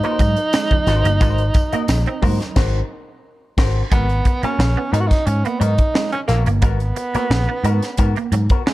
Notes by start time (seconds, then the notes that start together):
Already playing: D#4
0.03 A#3 F#4 A#4 C5, closed hi-hat
0.19 G#2 F#3, muted clean electric guitar stroke, kick, closed hi-hat, tambourine, muted conga, high conga
0.36 muted clean electric guitar stroke, closed hi-hat
0.53 G#3, snare, closed hi-hat, tambourine
0.71 muted clean electric guitar stroke, kick, closed hi-hat, high conga, low conga
0.87 G#1 F#4 A#4 C5, snare, closed hi-hat, tambourine
1.05 G1 A#3, muted clean electric guitar stroke, closed hi-hat, low conga
1.21 G#1 G#3 F#4 A#4 C5, kick, closed hi-hat, tambourine, muted conga
1.38 closed hi-hat
1.54 muted clean electric guitar stroke, kick, closed hi-hat, tambourine, muted conga
1.73 A#3 F#4 A#4 D#5, muted picked electric bass stroke, closed hi-hat
1.88 A#1, muted clean electric guitar stroke, snare, closed hi-hat, tambourine
2.06 C4, muted clean electric guitar stroke, closed hi-hat
2.22 G#2 A#3 F#4 A#4 C5, kick, open hi-hat, tambourine, muted conga, high conga, low conga
2.40 muted clean electric guitar stroke, snare, closed hi-hat, high conga
2.56 G#1 F#4 A#4 C5, kick, snare, crash
3.58 G#1 F#4 A#4 C5, kick, snare, crash
3.92 G#1 G#3 B3 F#4 A#4, kick, closed hi-hat
4.09 closed hi-hat
4.25 muted clean electric guitar stroke, kick, closed hi-hat
4.43 A#3 B3 C#4 F#4 A#4, muted picked electric bass stroke, closed hi-hat
4.59 A#1, muted clean electric guitar stroke, snare
4.77 B3, muted clean electric guitar stroke
4.92 G#2 G#3 B3 D#4 F#4 A#4, closed hi-hat
5.00 F#4
5.07 D#4, muted clean electric guitar stroke, kick, closed hi-hat
5.12 snare
5.26 G#2 C#4, muted clean electric guitar stroke, closed hi-hat
5.45 A#3 B3, closed hi-hat
5.60 G#2 F#3 B3 D#4 F#4 A#4, closed hi-hat
5.78 muted clean electric guitar stroke, kick, closed hi-hat
5.94 G#3, muted clean electric guitar stroke, snare
6.12 C#4, muted clean electric guitar stroke, closed hi-hat
6.28 A#1 A#3 B3 F#4 A#4, snare, closed hi-hat
6.46 G1 A#3, muted clean electric guitar stroke, closed hi-hat
6.62 G#1 G#3 B3 F#4 A#4, kick, closed hi-hat
6.80 closed hi-hat
6.96 muted clean electric guitar stroke, closed hi-hat
7.15 A#3 B3 F#4 A#4, muted picked electric bass stroke, closed hi-hat
7.30 A#1, muted clean electric guitar stroke, snare
7.48 B3, muted clean electric guitar stroke
7.64 G#2 G#3 B3 F#4 A#4, closed hi-hat
7.82 muted clean electric guitar stroke, snare, closed hi-hat
7.97 G#2 B3 F#4 A#4, muted clean electric guitar stroke, kick, closed hi-hat
8.16 A#3, closed hi-hat
8.32 G#2 F#3, muted clean electric guitar stroke, closed hi-hat
8.50 B3 F#4 A#4, kick, closed hi-hat
8.66 G#3, muted clean electric guitar stroke, snare